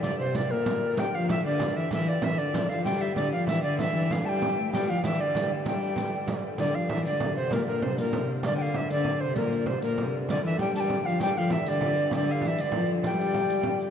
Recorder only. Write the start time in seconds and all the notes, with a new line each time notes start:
0.02 D5
0.19 C5
0.35 D5
0.50 A#4
0.99 G5
1.14 F5
1.30 E5
1.45 D5
1.76 E5
1.92 E5
2.08 D5
2.24 E5
2.38 D5
2.69 F5
2.85 G5
3.01 E5
3.16 D5
3.32 F5
3.47 E5
3.63 D5
3.79 E5
4.11 F5
4.25 G5 A5
4.73 G5
4.89 F5
5.04 E5
5.20 D5
5.68 G5
6.59 D5
6.74 F5
6.89 E5
7.05 D5
7.36 C5
7.52 A#4
7.66 A#4
7.82 C5
7.99 A#4
8.46 D5
8.57 G5
8.61 F5
8.76 E5
8.91 D5
9.20 C5
9.36 A#4
9.66 C5
9.83 A#4
10.30 D5
10.45 E5
10.59 G5
10.75 A5
10.80 G5
11.05 F5
11.21 G5
11.37 F5
11.52 E5
11.68 D5
12.15 D5
12.31 F5
12.47 E5
12.60 D5
13.06 G5